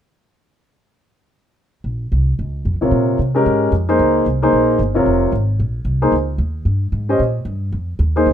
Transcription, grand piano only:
2.81 3.17 C3 soft
2.81 3.17 F4 soft
2.81 3.17 A#4 soft
2.81 3.17 C#5 soft
3.35 3.70 G#3 medium
3.35 3.71 C#4 soft
3.35 3.71 G4 soft
3.35 3.71 A#4 medium
3.89 4.24 A#3 medium
3.89 4.24 D#4 soft
3.89 4.24 G#4 soft
3.89 4.24 C5 medium
4.42 4.78 A#3 medium
4.42 4.78 D#4 medium
4.42 4.78 G#4 soft
4.42 4.78 C5 medium
4.95 5.30 C3 soft
4.95 5.31 F4 soft
4.95 5.31 A#4 soft
4.95 5.31 C#5 medium
6.02 6.12 A#3 medium
6.02 6.12 D#4 soft
6.02 6.12 G#4 soft
6.02 6.12 C5 medium
7.09 7.19 C#4 soft
7.09 7.19 G4 soft
7.09 7.19 C5 soft
7.09 7.20 D#5 medium
8.16 8.26 A#3 medium
8.16 8.26 D#4 soft
8.16 8.26 G#4 soft
8.16 8.26 C5 medium

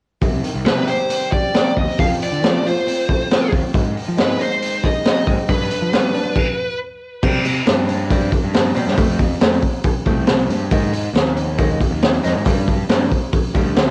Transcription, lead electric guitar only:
0.66 0.89 B4 medium
0.87 1.31 C5 medium
1.32 1.77 D5 medium
1.78 2.00 D#5 medium
2.00 2.06 F5 medium
2.23 2.67 D5 medium
2.67 3.50 C5 medium
4.22 4.42 B4 medium
4.42 4.86 C5 medium
4.84 5.25 D#5 medium
5.49 6.77 B4 medium

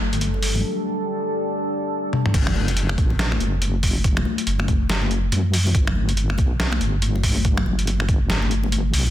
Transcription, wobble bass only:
0.00 0.64 G1 medium
2.34 2.97 F#1 loud
2.98 3.39 A1 medium
3.40 4.24 F#1 medium
4.47 5.31 F#1 loud
5.32 5.73 F#2 loud
5.75 6.37 G1 loud
6.38 6.80 B1 loud
6.81 7.65 G1 medium
7.66 8.28 G1 loud
8.30 8.92 G1 loud
8.94 9.10 B1 medium

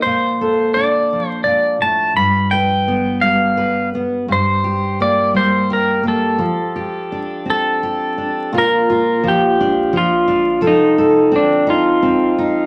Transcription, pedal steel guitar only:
0.02 0.74 C5 medium
0.74 1.29 D5 medium
1.29 1.43 C5 medium
1.44 1.82 D5 medium
1.82 2.16 A5 medium
2.17 2.53 B5 medium
2.51 3.24 G5 medium
3.21 3.89 F5 medium
4.32 5.02 C5 medium
5.02 5.36 D5 medium
5.37 5.71 C5 medium
5.73 6.07 A#4 medium
6.08 7.49 A4 medium
7.50 8.58 A4 medium
8.58 9.28 A#4 medium
9.28 9.98 G4 medium
9.97 10.67 F4 medium
10.67 11.35 D#4 medium
11.36 11.70 D4 medium
11.70 12.66 F4 medium

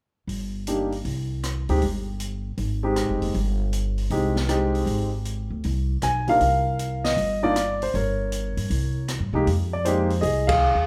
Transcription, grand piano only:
0.68 0.90 A#3 soft
0.68 0.90 D4 soft
0.68 0.90 D#4 soft
0.68 0.90 G4 soft
1.69 1.81 G#3 medium
1.69 1.81 C4 medium
1.69 1.81 D#4 soft
1.69 1.81 G4 medium
2.83 3.32 G#3 medium
2.83 3.32 C4 soft
2.83 3.32 D#4 soft
2.83 3.32 G4 medium
4.11 4.34 G#3 medium
4.11 4.34 C4 soft
4.11 4.34 D#4 soft
4.11 4.34 G4 medium
4.49 5.08 G#3 medium
4.49 5.08 C4 medium
4.49 5.08 D#4 soft
4.49 5.08 G4 medium
6.03 6.27 G#5 medium
6.27 6.39 C3 soft
6.27 6.39 A#3 soft
6.27 6.40 D4 soft
6.27 6.40 D#4 soft
6.27 6.40 F4 medium
6.27 7.01 A#4 medium
6.27 7.08 F5 medium
7.04 7.44 D#5 medium
7.43 7.54 A#3 medium
7.43 7.54 D4 medium
7.43 7.54 D#4 medium
7.43 7.55 F4 medium
7.43 7.83 D5 medium
7.83 7.94 C5 medium
7.95 9.06 A#4 soft
7.95 9.05 C#5 medium
9.34 9.45 G#3 medium
9.34 9.46 A#3 medium
9.34 9.46 D#4 medium
9.34 9.46 G4 medium
9.73 9.85 D5 medium
9.85 10.08 G#3 medium
9.85 10.09 A#3 medium
9.85 10.09 D#4 medium
9.85 10.09 G4 medium
9.85 10.24 C5 medium
10.21 10.47 G#4 medium
10.21 10.48 D#5 medium
10.47 10.85 G#4 medium
10.47 10.87 F5 medium

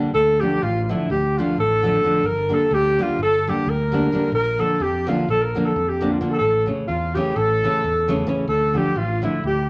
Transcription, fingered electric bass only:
0.14 0.43 D2 medium
0.63 0.91 A1 medium
1.10 1.39 D2 medium
1.58 1.97 A1 medium
2.23 2.52 G1 medium
2.71 3.00 D2 medium
3.19 3.48 G1 medium
3.66 4.05 D2 medium
4.32 4.61 A#1 medium
4.80 5.09 F2 medium
5.28 5.57 A#1 medium
5.76 6.15 F2 medium
6.41 6.69 A1 medium
6.89 7.17 E2 medium
7.36 7.65 A1 medium
7.84 8.23 E2 medium
8.47 8.76 D2 medium
8.96 9.25 A1 medium
9.44 9.70 D2 medium

